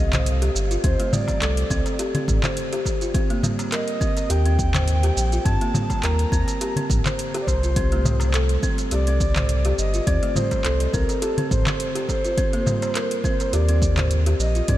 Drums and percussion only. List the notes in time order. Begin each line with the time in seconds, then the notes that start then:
0.13 clap, closed hi-hat, mid tom, darbuka dum, shaker
0.26 closed hi-hat, shaker
0.42 closed hi-hat
0.55 darbuka ka, shaker
0.71 closed hi-hat, shaker
0.84 kick, closed hi-hat, shaker
1.00 closed hi-hat
1.13 mid tom, darbuka tek, darbuka dum, shaker
1.28 kick, closed hi-hat, darbuka tek, shaker
1.42 clap, closed hi-hat, shaker
1.57 closed hi-hat
1.70 kick, shaker
1.86 closed hi-hat, darbuka ka, shaker
1.99 closed hi-hat, shaker
2.15 closed hi-hat, darbuka dum
2.28 kick, mid tom, darbuka ka, darbuka tek, shaker
2.43 clap, closed hi-hat, darbuka dum, shaker
2.57 closed hi-hat, shaker
2.73 closed hi-hat
2.86 kick, darbuka ka, darbuka tek, shaker
3.01 closed hi-hat, shaker
3.14 kick, closed hi-hat, shaker
3.30 closed hi-hat
3.43 mid tom, darbuka tek, darbuka dum, shaker
3.59 closed hi-hat, darbuka tek, shaker
3.72 clap, closed hi-hat, shaker
3.88 closed hi-hat
4.01 kick, shaker
4.17 closed hi-hat, darbuka ka, shaker
4.30 closed hi-hat, shaker
4.46 closed hi-hat
4.59 kick, shaker
4.74 clap, closed hi-hat, mid tom, darbuka dum, shaker
4.88 closed hi-hat, shaker
5.03 closed hi-hat
5.17 darbuka ka, shaker
5.32 closed hi-hat, shaker
5.45 kick, closed hi-hat, shaker
5.61 closed hi-hat
5.74 mid tom, darbuka tek, darbuka dum, shaker
5.90 kick, closed hi-hat, darbuka tek, shaker
6.03 clap, closed hi-hat, shaker
6.19 closed hi-hat
6.32 kick, shaker
6.48 closed hi-hat, darbuka ka, shaker
6.61 closed hi-hat, shaker
6.76 closed hi-hat, darbuka dum
6.90 kick, mid tom, darbuka ka, darbuka tek, shaker
7.06 clap, closed hi-hat, darbuka dum, shaker
7.19 closed hi-hat, shaker
7.34 closed hi-hat
7.47 kick, darbuka ka, darbuka tek, shaker
7.63 closed hi-hat, shaker
7.76 kick, closed hi-hat, shaker
7.92 closed hi-hat
8.05 mid tom, darbuka tek, darbuka dum, shaker
8.20 closed hi-hat, darbuka tek, shaker
8.34 clap, closed hi-hat, shaker
8.49 closed hi-hat
8.63 kick, shaker
8.78 closed hi-hat, darbuka ka, shaker
8.91 closed hi-hat, shaker
9.07 closed hi-hat
9.20 kick, shaker
9.36 clap, closed hi-hat, mid tom, darbuka dum, shaker
9.49 closed hi-hat, shaker
9.65 closed hi-hat
9.78 darbuka ka, shaker
9.94 closed hi-hat, shaker
10.07 kick, closed hi-hat, shaker
10.23 closed hi-hat
10.36 mid tom, darbuka tek, darbuka dum, shaker
10.51 kick, closed hi-hat, darbuka tek, shaker
10.65 clap, closed hi-hat, shaker
10.80 closed hi-hat
10.94 kick, shaker
11.09 closed hi-hat, darbuka ka, shaker
11.22 closed hi-hat, shaker
11.38 closed hi-hat, darbuka dum
11.51 kick, mid tom, darbuka ka, darbuka tek, shaker
11.67 clap, closed hi-hat, darbuka dum, shaker
11.80 closed hi-hat, shaker
11.96 closed hi-hat
12.09 kick, darbuka ka, darbuka tek, shaker
12.25 closed hi-hat, shaker
12.38 kick, closed hi-hat, shaker
12.53 closed hi-hat
12.67 mid tom, darbuka tek, darbuka dum, shaker
12.82 closed hi-hat, darbuka tek, shaker
12.95 clap, closed hi-hat, shaker
13.11 closed hi-hat
13.24 kick, shaker
13.40 closed hi-hat, darbuka ka, shaker
13.53 closed hi-hat, shaker
13.69 closed hi-hat
13.82 kick, shaker
13.97 clap, closed hi-hat, mid tom, darbuka dum, shaker
14.11 closed hi-hat, shaker
14.26 closed hi-hat
14.40 darbuka ka, shaker
14.55 closed hi-hat, shaker
14.68 kick, closed hi-hat, shaker